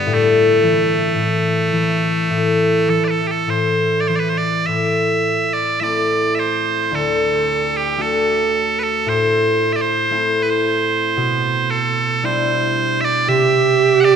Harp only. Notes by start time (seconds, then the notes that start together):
Already playing: G2 D3 G3
0.06 A2
0.63 E3
1.15 A2
1.72 E3
2.30 A2
2.88 E3
3.47 A2
4.09 E3
4.68 A2
5.81 A3 C4 E4
6.91 D2
7.98 A3 D4 F#4
9.06 A2
10.11 A3 C4 E4
11.17 B2
12.23 G3 D4 E4
13.28 C3